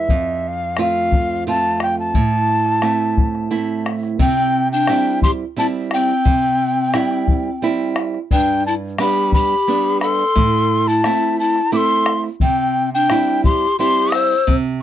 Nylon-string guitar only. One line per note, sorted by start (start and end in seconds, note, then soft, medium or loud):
0.10 2.11 F2 medium
0.78 1.45 A3 soft
0.78 1.45 C4 soft
0.78 1.45 F4 medium
1.47 2.13 A3 soft
1.47 2.13 C4 soft
1.47 2.13 F4 medium
2.15 4.16 A2 medium
2.83 3.49 A3 soft
2.83 3.49 C4 soft
2.83 3.50 E4 soft
3.51 4.18 A3 soft
3.51 4.18 C4 soft
3.51 4.18 E4 medium
4.19 4.86 C3 medium
4.88 5.43 G3 soft
4.88 5.43 C4 soft
4.88 5.44 E4 medium
5.56 6.12 G3 medium
5.56 6.12 C4 soft
5.56 6.12 E4 medium
6.25 6.92 C3 medium
6.93 7.48 G3 soft
6.93 7.49 C4 soft
6.93 7.49 E4 medium
7.62 8.17 G3 medium
7.62 8.18 C4 soft
7.62 8.18 E4 medium
8.31 8.97 G2 medium
8.98 9.54 G3 medium
8.98 9.54 B3 soft
8.98 9.54 D4 medium
9.67 10.22 G3 soft
9.67 10.23 B3 soft
9.67 10.23 D4 medium
10.36 11.02 A2 medium
11.04 11.59 A3 medium
11.04 11.60 C4 soft
11.04 11.60 E4 medium
11.72 12.27 A3 soft
11.72 12.28 C4 soft
11.72 12.28 E4 medium
12.41 13.08 C3 medium
13.10 13.65 G3 medium
13.10 13.65 C4 soft
13.10 13.66 E4 medium
13.79 14.34 G3 medium
13.79 14.34 C4 soft
13.79 14.34 E4 medium
14.47 14.82 C3 medium